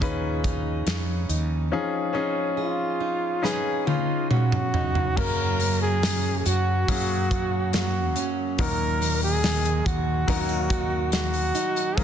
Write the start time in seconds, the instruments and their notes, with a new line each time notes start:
Already playing: fretless electric bass D#2, steel-string acoustic guitar F3 C#4 D#4, grand piano F3 D#4 F4 G#4
0.00 grand piano C#4 D#4 F4 B4, steel-string acoustic guitar G#4, kick, closed hi-hat
0.44 steel-string acoustic guitar D#4, kick, closed hi-hat
0.86 fretless electric bass F2, steel-string acoustic guitar C#4, snare, closed hi-hat
1.29 fretless electric bass D#2, steel-string acoustic guitar D#4, closed hi-hat
1.72 grand piano F3 C#4 D#4 F4 G#4
2.13 grand piano C#4 D#4 F4 G#4, steel-string acoustic guitar C#4
2.57 flugelhorn F4, steel-string acoustic guitar G#4
3.00 steel-string acoustic guitar D#4
3.42 grand piano C#4 D#4 B4 F5, steel-string acoustic guitar G#4, flugelhorn G#4, snare
3.87 steel-string acoustic guitar D#4, flugelhorn F4, high tom
4.31 steel-string acoustic guitar C#4, flugelhorn F#4, mid tom
4.52 mid tom
4.74 steel-string acoustic guitar D#4, floor tom
4.95 floor tom
5.16 fretless electric bass F#2, steel-string acoustic guitar F#2, grand piano C#3 F#3 A#3 C#4 F#4 A#4, flugelhorn A#4, kick, crash
5.60 steel-string acoustic guitar A#3, hi-hat pedal, open hi-hat
5.82 flugelhorn G#4
6.03 steel-string acoustic guitar C#4, snare, hi-hat pedal, open hi-hat
6.39 flugelhorn G#4
6.46 fretless electric bass F#2, steel-string acoustic guitar F#4, flugelhorn F#4, hi-hat pedal, open hi-hat
6.88 fretless electric bass F#2, grand piano F#3 A#3 C#4 F#4 G#4, steel-string acoustic guitar C#4, kick, hi-hat pedal, open hi-hat
7.31 steel-string acoustic guitar F#4, kick, hi-hat pedal, open hi-hat
7.73 steel-string acoustic guitar A#3, flugelhorn F#4, snare, hi-hat pedal, open hi-hat
8.16 steel-string acoustic guitar C#4, hi-hat pedal, open hi-hat
8.58 fretless electric bass D#2, grand piano A#2 F#3 A#3 D#4 F#4 A#4, steel-string acoustic guitar D#3, flugelhorn A#4, kick, hi-hat pedal, open hi-hat
9.01 steel-string acoustic guitar A#3, hi-hat pedal, open hi-hat
9.22 flugelhorn G#4, open hi-hat
9.43 steel-string acoustic guitar D#4, snare, hi-hat pedal, open hi-hat
9.65 hi-hat pedal
9.86 fretless electric bass D#2, steel-string acoustic guitar F#4, flugelhorn F#4, kick, hi-hat pedal, open hi-hat
10.28 grand piano F#3 A#3 D#4 F#4 A#4, steel-string acoustic guitar C#4, kick, hi-hat pedal, open hi-hat
10.49 steel-string acoustic guitar D#4
10.70 steel-string acoustic guitar F#4, kick, hi-hat pedal, open hi-hat
11.12 steel-string acoustic guitar A#3, flugelhorn F#4, snare, hi-hat pedal, open hi-hat
11.34 open hi-hat
11.55 steel-string acoustic guitar D#4, hi-hat pedal, open hi-hat
11.76 hi-hat pedal
11.97 fretless electric bass C#2, grand piano G#2 F3 G#3 C#4 F4 G#4, steel-string acoustic guitar C#3, flugelhorn A#4, kick, hi-hat pedal, open hi-hat